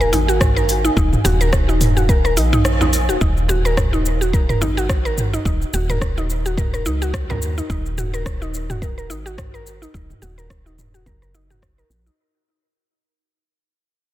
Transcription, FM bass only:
Already playing: D#1
0.13 G#1
0.97 D#1
1.25 D#1
2.37 A#1
3.09 D#1
3.21 D#1
4.61 G#1
5.45 D#1
5.73 D#1
6.86 C#2
7.42 D#2
7.70 D#1
9.10 G#1
9.94 D#1
10.22 D#1
11.06 F#1
11.90 A#1

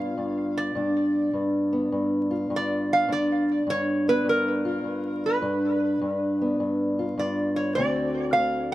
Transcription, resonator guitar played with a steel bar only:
Already playing: F5
0.58 D5
2.56 D5
2.93 F5
3.12 D5
3.70 C#5
4.09 B4
4.29 A#4
5.26 B4
7.19 D5
7.56 C#5
7.75 D5
8.33 F5

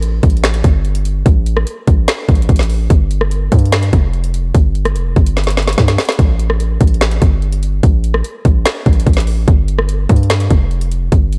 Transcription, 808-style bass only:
Already playing: A1
0.23 A1
0.64 G1
1.26 A1
1.88 A1
2.29 A1
2.49 A1
2.90 G1
3.52 G2
3.93 F1
4.55 G1
4.96 F1
5.16 G1
5.78 G2
6.19 A1
6.81 A1
7.22 G1
7.83 A1
8.45 A1
8.86 A1
9.07 A1
9.48 G1
10.09 G2
10.51 F1
11.12 G1

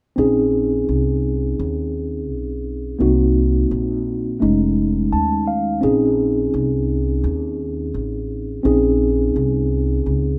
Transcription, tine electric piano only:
0.16 C4 C#4 D#4 G#4
2.99 A#3 C4 D#4 F#4
4.40 G#3 A3 C#4 D#4
5.13 A5
5.47 F5
5.81 C4 C#4 D#4 G#4
8.63 C4 C#4 D#4 G#4

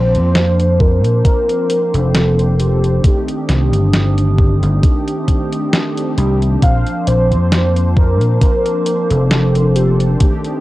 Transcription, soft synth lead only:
Already playing: C5
0.80 A#4
1.25 A#4
1.94 A4
2.60 G4
6.63 F5
7.07 C5
7.98 A#4
8.42 A#4
9.10 A4
9.76 G4

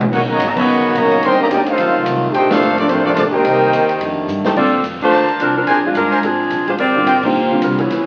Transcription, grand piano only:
4.56 D3 G3 C4 F4
6.96 D3 G3 C4 F4
7.24 D3 G3 C4 D#4
7.51 D3 G3 C4 F4

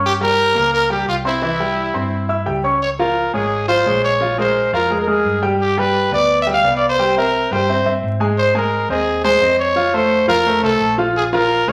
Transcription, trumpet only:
0.06 G4
0.23 A#4
0.74 A#4
0.92 G4
1.09 F4
1.27 E4
2.82 C#5
2.99 A#4
3.34 G#4
3.68 C5
4.05 C#5
4.40 C5
4.74 A#4
5.01 A#4
5.09 G#4
5.61 G4
5.79 B4
6.14 D5
6.42 E5
6.54 F5
6.77 D5
6.89 C5
7.18 A#4
7.52 C5
8.38 C5
8.57 A#4
8.91 G#4
9.24 C5
9.59 C#5
9.94 C5
10.29 A#4
10.64 A4
11.17 G#4
11.34 A#4

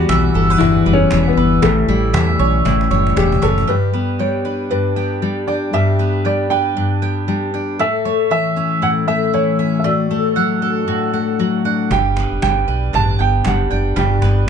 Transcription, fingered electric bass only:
0.09 B1
0.35 G1
0.60 G1
0.86 F#1
1.11 E1
1.36 G1
1.63 A1
1.88 A1
2.14 E2
2.40 B1
2.66 A1
2.91 F#1
3.17 E1
3.43 F#1
11.91 G1
12.32 F#1
12.43 G1
12.68 B1
12.94 A1
13.20 G1
13.45 F#1
13.71 F#1
13.97 G1
14.22 G1

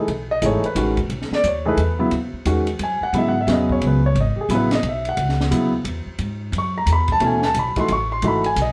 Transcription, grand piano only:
0.31 D#5
0.42 E3 A3 D#4 G#4 C#5
0.66 B4
0.76 D#3 G#3 C#4 F#4
1.35 D5
1.48 C#5
1.65 E3 A3 D#4 G#4 B4
1.99 C#3 F#3 B3 E4
2.46 D#3 G#3 C#4 F#4
2.83 G#5
3.03 F#5
3.14 C#3 F#3 B3 E4
3.18 E5
3.29 F#5
3.41 E5
3.47 C#3 F#3 B3 C#4
3.52 D#5
3.72 C#5
3.87 B4
4.06 C#5
4.21 D#5
4.41 G#4
4.50 C#3 F#3 B3 E4
4.55 B4
4.75 D#5
4.89 E5
5.09 F#5
5.51 C#3 F#3 B3 E4
6.58 C#6
6.78 A#5
6.93 B5
7.12 A5
7.20 B2 E3 A3 C#4
7.26 G#5
7.45 A5
7.59 B5
7.77 E3 A3 D#4 F#4 C6
7.92 C#6
8.12 C6
8.24 E3 A3 D#4 F#4
8.28 B5
8.46 G#5
8.62 D#5

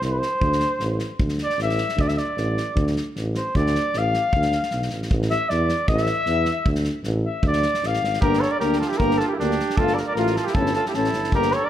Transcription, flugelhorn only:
0.04 C5
0.12 B4
0.19 C5
1.44 D5
1.63 E5
2.01 D5
2.08 E5
2.18 D5
3.36 C5
3.56 D5
3.98 F5
5.31 E5
5.49 D5
5.89 E5
7.26 E5
7.47 D5
7.87 F5
8.22 A#4
8.41 C#5
8.51 D5
8.60 A#4
8.79 A4
8.88 G4
8.97 A#4
9.18 A4
9.28 G4
9.36 G4
9.77 A4
9.94 D5
10.07 D5
10.15 A#4
10.36 A4
10.45 G4
10.54 A4
10.75 A4
10.88 G4
10.95 A4
11.35 A#4
11.54 C#5
11.64 D5

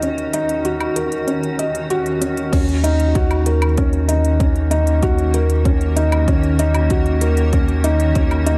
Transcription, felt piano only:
Already playing: C#4 D#4 F#4 A#4
0.03 C#4
0.34 D#4
0.65 F#4
0.96 A#4
1.27 C#4
1.59 D#5
1.90 F#4
2.21 C#4
2.52 C#4
2.84 D#4
3.15 F#4
3.46 A#4
3.78 C#4
4.08 D#4
4.40 C#4
4.71 D#4
5.03 F#4
5.34 A#4
5.65 C#4
5.96 D#4
6.28 C#4
6.59 D#4
6.90 F#4
7.21 A#4
7.53 C#4
7.84 D#4
8.16 C#4
8.46 D#4

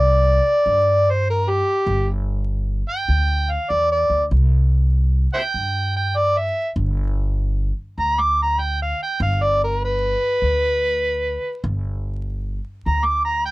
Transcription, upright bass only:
Already playing: C2
0.66 G2
1.86 G1
3.08 D2
3.70 E2
4.10 D2
4.31 C2
5.54 G2
6.76 G1
7.98 D2
9.20 G1
10.42 D2
11.64 G1
12.86 D2

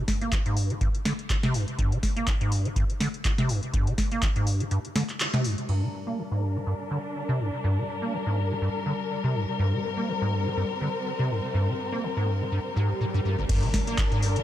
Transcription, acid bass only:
0.21 A#3
0.32 C3
0.46 G#2
0.57 G2
0.70 G3
0.81 G2
1.06 D3
1.43 C3
1.54 G2
1.79 G2
1.92 D3
2.17 A#3
2.27 C3
2.41 G#2
2.52 G2
2.65 G3
2.76 G2
3.01 D3
3.38 C3
3.49 G2
3.74 G2
3.87 D3
4.12 A#3
4.22 C3
4.36 G#2
4.47 G2
4.60 G3
4.71 G2
4.96 D3
5.34 C3
5.45 G2
5.69 G2
5.83 D3
6.07 A#3
6.18 C3
6.31 G#2
6.42 G2
6.56 G3
6.67 G2
6.91 D3
7.29 C3
7.40 G2
7.64 G2
7.78 D3
8.02 A#3
8.13 C3
8.26 G#2
8.37 G2
8.51 G3
8.62 G2
8.86 D3
9.24 C3
9.35 G2
9.59 G2
9.73 D3
9.97 A#3
10.08 C3
10.21 G#2
10.32 G2
10.46 G3
10.57 G2
10.81 D3
11.19 C3
11.30 G2
11.54 G2
11.68 D3
11.92 A#3
12.03 C3
12.17 G#2
12.27 G2
12.41 G3
12.52 G2
12.76 G#2
12.90 G2
13.01 A#2
13.14 G2
13.25 G2
13.39 G1
13.49 G2
13.63 D3
13.87 A#3
13.98 C3
14.12 G#2
14.23 G2
14.36 G3

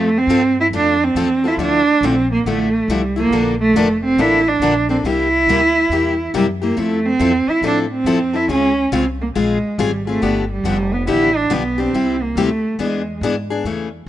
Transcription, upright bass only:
Already playing: F2
0.27 G2
0.71 F2
1.15 E2
1.57 D2
2.01 A#1
2.44 A1
2.88 C2
3.30 A#1
3.73 F1
4.17 A1
4.60 A#1
5.04 C2
5.47 D2
5.89 E2
6.34 F#2
6.77 F2
7.20 E2
7.47 muted upright bass stroke
7.62 A2
8.04 F2
8.48 C#2
8.92 C2
9.36 A#1
9.63 muted upright bass stroke
9.78 G#1
10.22 G1
10.64 F1
11.08 A1
11.51 B1
11.93 C2
12.35 D2
12.79 E2
13.21 G#2
13.64 E2

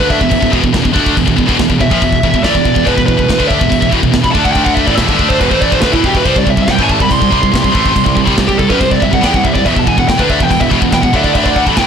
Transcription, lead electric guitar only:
0.10 E5
1.81 E5
2.44 D5
2.86 B4
3.06 B4
3.48 E5
4.24 B5
4.31 A5
4.44 F#5
4.52 G5
4.64 F#5
4.74 E5
4.86 D5
4.95 E5
5.29 C5
5.41 B4
5.51 C5
5.61 D5
5.71 C5
5.81 B4
5.92 E4
6.05 G4
6.16 B4
6.26 C5
6.38 D5
6.50 E5
6.62 F#5
6.71 G5
6.83 G#5
6.92 A5
7.02 B5
7.13 C6
8.48 G4
8.58 A4
8.70 B4
8.80 C5
8.91 D5
9.03 E5
9.13 F#5
9.25 G5
9.36 F#5
9.44 E5
9.54 D5
9.66 E5
9.79 A5
9.89 G#5
9.99 F#5
10.08 G5
10.20 B4
10.30 E5
10.43 G5
10.51 G5
10.61 E5
10.94 G5
11.02 F#5
11.16 E5
11.23 D5
11.34 E5
11.44 D5
11.56 F#5
11.67 A5
11.79 G5

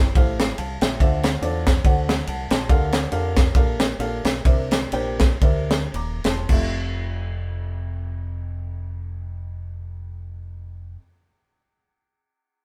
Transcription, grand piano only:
0.16 E4 G4 A4 C5 F5
0.58 F5 A5
0.82 E5 G5
1.00 D3 D4 F4 A4 C5 E5
1.42 D4 F4 A4 C5 D5
1.85 D3 D4 F#4 A4 C5 F#5
2.28 F#5 A5
2.51 A5 C6
2.69 D3 D4 G4 A4 A#4 F5
3.12 D4 G4 A4 A#4 F5
3.55 D4 G4 A4 A#4 F5
4.00 D4 G4 A4 A#4 F5
4.45 C3 D4 G4 A#4 C5 E5
4.93 D4 G4 A#4 C5 G5
5.42 D4 G4 A#4 C5 E5
5.95 A#5 D6
6.26 A5 C6
6.48 F2 A3 F4 G4
6.52 E5

